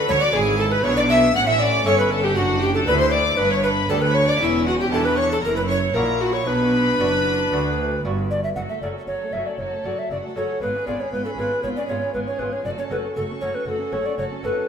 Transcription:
Already playing: D4 F#4 A4
0.09 D2 D3 A4 C#5 C#6
0.20 F#4 D5 D6
0.33 G#1 G#2 E4 G#4 G#5
0.58 A4 A5
0.72 B4 B5
0.84 B1 B2 D4 E4 B4 C#5 C#6
0.97 D5 D6
1.09 E5 E6
1.35 A1 A2 C#4 F#5 F#6
1.47 E5 E6
1.60 D5 D6
1.85 G1 G2 C#4 E4 A4 C#5 C#6
1.98 B4 B5
2.11 A4 A5
2.24 G4 G5
2.35 F#1 F#2 D4 F#4 F#5
2.61 G4 G5
2.74 A4 A5
2.86 D2 C4 D4 E4 A4 B4 B5
2.99 C5 C6
3.12 D5 D6
3.37 G1 G2 D4 B4 B5
3.50 C#5 C#6
3.63 B4 B5
3.89 D2 B3 D4 G4 A4 A5
4.02 B4 B5
4.14 C#5 C#6
4.27 D5 D6
4.40 E1 E2 C#4 E4 E5
4.66 F#4 F#5
4.79 G4 G5
4.91 E2 E3 C#4 D4 E4 G4 A4 A5
5.04 B4 B5
5.16 C#5 C#6
5.29 A4 A5
5.42 F#1 F#2 E4 A#4 A#5
5.55 B4 B5
5.68 C#5 C#6
5.94 A#1 A#2 A#3 E4 F#4 A#4 A#5
6.20 F#4 F#5
6.33 C#5 C#6
6.46 B1 B2 D4 B4 B5
6.99 F#1 F#2 B3 D4 F#4
7.51 D2 B3 D4 F#4
8.04 G1 G2 B3 D4 F#4
8.31 D5
8.44 E5
8.56 F#1 F#2 F#3 F#4 F#5
8.69 A3 A4 E5
8.82 F#1 F#2 F#3 C#4 F#4 A4 D5
8.95 A3 A4
9.07 F#1 F#2 F#3 F#4 C#5
9.21 A3 A4
9.33 F#1 F#2 F#3 C#4 F#4 A4 E5
9.46 A3 A4 D5
9.59 F#1 F#2 F#3 F#4 C#5 A5
9.73 A3 A4
9.85 F#1 F#2 F#3 C#4 F#4 A4 D5
9.98 A3 A4 E5
10.10 F#1 F#2 F#3 F#4 D5 F#5
10.24 A3 A4
10.36 F#1 F#2 F#3 C#4 F#4 A4 C#5
10.48 A3 A4
10.61 G#1 G#2 G#3 B3 F4 B4 B5
10.74 C#4 G#4
10.87 G#1 G#2 B3 C#4 F4 G#4 D5
11.00 C#4 G#4 C#5
11.12 G#1 G#2 B3 F4 B4
11.25 C#4 G#4 A4
11.38 G#1 G#2 B3 C#4 F4 G#4 B4
11.51 C#4 G#4
11.63 G#1 G#2 B3 F4 C#5
11.76 C#4 G#4 D5
11.88 G#1 G#2 B3 C#4 F4 G#4 C#5
12.02 C#4 G#4
12.14 G#1 G#2 B3 F4 B4 G#5
12.27 C#4 G#4 C#5
12.39 G#1 G#2 B3 C#4 F4 G#4 B4
12.52 C#4 G#4 C#5
12.65 F#1 F#2 A3 F#4 D5 A5
12.77 C#4 A4 C#5
12.90 F#1 F#2 A3 C#4 F#4 A4 B4
13.03 C#4 A4
13.16 F#1 F#2 A3 F#4 A4 C#6
13.29 C#4 A4
13.41 F#1 F#2 A3 C#4 F#4 A4 C#5
13.54 C#4 A4 B4
13.66 F#1 F#2 A3 F#4 A4 F#5
13.80 C#4 A4
13.92 F#1 F#2 A3 C#4 F#4 A4 C#5
14.05 C#4 A4 D5
14.18 F#1 F#2 A3 F#4 C#5 A5
14.30 C#4 A4
14.43 F#1 F#2 A3 C#4 F#4 A4 B4
14.56 C#4 A4

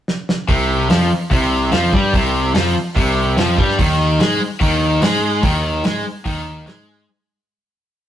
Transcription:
0.08 snare
0.29 snare
0.48 C2 C3, kick, open hi-hat
0.90 F2 F3, snare, open hi-hat
1.01 snare
1.31 C2 C3, kick, open hi-hat
1.72 F2 F3, snare, open hi-hat
1.93 G2 G3, kick
2.13 C2 C3, kick, open hi-hat
2.54 F2 F3, snare, open hi-hat
2.67 snare
2.96 C2 C3, kick, open hi-hat
3.37 F2 F3, snare, open hi-hat
3.58 G2 G3, kick
3.70 snare
3.78 D#2 D#3, kick, open hi-hat
4.19 G#2 G#3, snare, open hi-hat
4.60 D#2 D#3, kick, open hi-hat
5.01 G#2 G#3, snare, open hi-hat
5.43 D#2 D#3, kick, open hi-hat
5.84 G#2 G#3, snare, open hi-hat
6.25 D#2 D#3, kick, open hi-hat
6.66 G#2 G#3, snare, open hi-hat

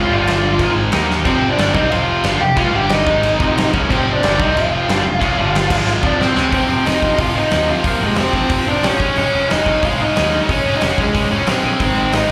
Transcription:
Already playing: F4 F5
0.08 G1 G2 D3 G3
0.27 snare, crash
0.59 G#1 G#2 D#3 G#3, kick, crash
0.92 D#2 D#3 A#3 D#4, snare, crash
1.11 snare
1.25 F1 F2 C3 F3 C4 C5, kick, crash
1.50 D4 D5
1.58 G1 G2 D3 G3, snare, crash
1.73 C2 C3 G3 C4 D#4 D#5, kick
1.91 F1 F2 C3 F3 F4 F5, crash
2.24 G1 G2 D3 G3, snare, crash
2.41 F1 F2 C3 G4 G5
2.56 C#2 C#3 G#3 C#4 F4 F5, kick, crash
2.73 G1 G2 D3 G3 G4 G5
2.89 D#4 D#5, snare, crash
3.06 G#1 G#2 D#3 G#3, kick
3.23 crash
3.39 F1 F2 C3 F3, kick
3.58 snare, crash
3.74 C#2 C#3 G#3 C#4, kick
3.89 F1 F2 C3 F3 C4 C5, kick, crash
4.13 D4 D5
4.22 G1 G2 D3 G3, snare, crash
4.39 C2 C3 G3 C4 D#4 D#5, kick
4.55 F1 F2 C3 F3 F4 F5, crash
4.88 G1 G2 D3 G3, snare, crash
5.04 F1 F2 C3
5.20 C#2 C#3 G#3 C#4, kick, crash
5.37 G1 G2 D3 G3
5.55 snare, crash
5.70 G#1 G#2 D#3 G#3, kick, crash
5.87 snare
6.02 F1 F2 C3 F3 D4 D5, kick
6.20 C4 C5, snare
6.35 C#2 C#3 G#3 C#4, snare
6.52 F1 F2 C3 F3 C4 C5, kick, open hi-hat
6.69 F1 F2 C3 F3
6.86 F1 F2 C3 F3 D#4 D#5, snare, open hi-hat
7.02 F1 F2 C3 F3, kick
7.14 D#5
7.18 F1 F2 C3 F3 F4 F5, kick, open hi-hat
7.35 F2 C3 F3 D#4 D#5
7.51 D#2 F2 C3 F3, snare, open hi-hat
7.68 F2 C3 F3 F4 F5
7.84 F1 F2 C3 F3 A#3 A#4, kick, open hi-hat
8.01 F1 F2 C3 F3 G#3 G#4
8.15 F1 F2 C3 F3, snare, open hi-hat
8.20 C4 C5
8.33 F1 F2 C3 F3, kick
8.49 F1 F2 C3 F3, kick, open hi-hat
8.66 F1 F2 C3 F3 D4 D5
8.83 A#1 F2 C3 F3 C#4 C#5, snare, open hi-hat
9.00 F1 C#3 G#3 C#4, kick
9.16 F1 C#3 G#3 C#4 C#5, open hi-hat
9.33 F1 C#3 G#3 C#4
9.48 F1 C#3 G#3 C#4 D#4 D#5, snare, open hi-hat
9.65 F1 C#3 G#3 C#4, kick
9.82 F1 C#3 G#3 C#4 F4 F5, kick, open hi-hat
9.99 C#3 G#3 C#4 D#4 D#5
10.16 D#2 C#3 G#3 C#4, snare, open hi-hat
10.32 C#3 G#3 C#4
10.49 F1 C#3 G#3 C#4 C#5, kick, open hi-hat
10.66 F1 C#3 G#3 C#4
10.76 D#4 D#5
10.81 F1 C#3 G#3 C#4 C#5, snare, open hi-hat
10.97 F1 C#3 G#3 C#4 G#4, kick
11.14 F1 C#3 G#3 C#4, kick, open hi-hat
11.30 F1 C#3 G#3 C#4 C#5
11.47 A#1 C#3 G#3 C4 C#4 C5, snare, open hi-hat
11.64 A#1 C#3 G#3 C#4
11.79 G#1 G#2 D#3 G#3 C4 C5, kick, open hi-hat
11.96 G#1 G#2 D#3 G#3
12.12 G#1 G#2 D#3 G#3 D#4 D#5, snare, open hi-hat
12.27 D#3 G#3

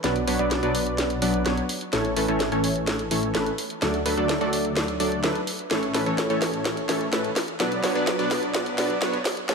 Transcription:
0.04 B1 F#3 B3 D4 B4 D5, snare, closed hi-hat
0.16 closed hi-hat
0.27 B1 F#3 B3 D4 B4 C#5, open hi-hat
0.39 B1 F#3 B3 D4 B4 D5, closed hi-hat
0.51 snare, closed hi-hat
0.63 B1 F#3 B3 D4 B4 D5, closed hi-hat
0.75 open hi-hat
0.87 closed hi-hat
0.98 snare, closed hi-hat
1.10 closed hi-hat
1.22 B1 F#3 B3 D4 B4 D5, open hi-hat
1.34 closed hi-hat
1.46 B1 F#3 B3 D4 B4 C#5, snare, closed hi-hat
1.57 closed hi-hat
1.69 open hi-hat
1.81 closed hi-hat
1.93 A1 E3 A3 C#4 A4 C#5, snare, closed hi-hat
2.05 closed hi-hat
2.17 A1 E3 A3 C#4 A4 B4, open hi-hat
2.28 A1 E3 A3 C#4 A4 C#5, closed hi-hat
2.40 snare, closed hi-hat
2.52 A1 E3 A3 C#4 A4 C#5, closed hi-hat
2.64 open hi-hat
2.76 closed hi-hat
2.87 snare, closed hi-hat
2.99 closed hi-hat
3.11 A1 E3 A3 C#4 A4 C#5, open hi-hat
3.23 closed hi-hat
3.35 A1 E3 A3 C#4 A4 B4, snare, closed hi-hat
3.46 closed hi-hat
3.58 open hi-hat
3.70 closed hi-hat
3.82 D2 F#3 A3 D4 A4 D5, snare, closed hi-hat
3.94 closed hi-hat
4.06 D2 F#3 A3 D4 A4 B4, open hi-hat
4.17 D2 F#3 A3 D4 A4 D5, closed hi-hat
4.29 snare, closed hi-hat
4.41 D2 F#3 A3 D4 A4 D5, closed hi-hat
4.53 open hi-hat
4.65 closed hi-hat
4.77 snare, closed hi-hat
4.88 closed hi-hat
5.00 D2 F#3 A3 D4 A4 D5, open hi-hat
5.12 closed hi-hat
5.24 D2 F#3 A3 D4 A4 B4, snare, closed hi-hat
5.35 closed hi-hat
5.47 open hi-hat
5.59 closed hi-hat
5.71 A1 E3 A3 C#4 A4 C#5, snare, closed hi-hat
5.83 closed hi-hat
5.94 A1 E3 A3 C#4 A4 B4, snare, open hi-hat
6.06 A1 E3 A3 C#4 A4 C#5, closed hi-hat
6.18 snare, closed hi-hat
6.30 A1 E3 A3 C#4 A4 C#5, closed hi-hat
6.42 snare, open hi-hat
6.54 closed hi-hat
6.65 snare, closed hi-hat
6.77 closed hi-hat
6.89 A1 E3 A3 C#4 A4 C#5, snare, open hi-hat
7.01 closed hi-hat
7.13 A1 E3 A3 C#4 A4 B4, snare, closed hi-hat
7.24 closed hi-hat
7.36 snare, open hi-hat
7.48 closed hi-hat
7.60 B1 F#3 B3 D4 B4 D5, snare, closed hi-hat
7.72 closed hi-hat
7.84 B1 F#3 B3 D4 B4 C#5, snare, open hi-hat
7.95 B1 F#3 B3 D4 B4 D5, closed hi-hat
8.07 snare, closed hi-hat
8.19 B1 F#3 B3 D4 B4 D5, closed hi-hat
8.31 snare, open hi-hat
8.43 closed hi-hat
8.55 snare, closed hi-hat
8.66 closed hi-hat
8.78 B1 F#3 B3 D4 B4 D5, snare, open hi-hat
8.90 closed hi-hat
9.02 B1 F#3 B3 D4 B4 C#5, snare, closed hi-hat
9.14 closed hi-hat
9.25 snare, open hi-hat
9.37 closed hi-hat
9.49 A1 E3 A3 C#4 A4 C#5, snare, closed hi-hat

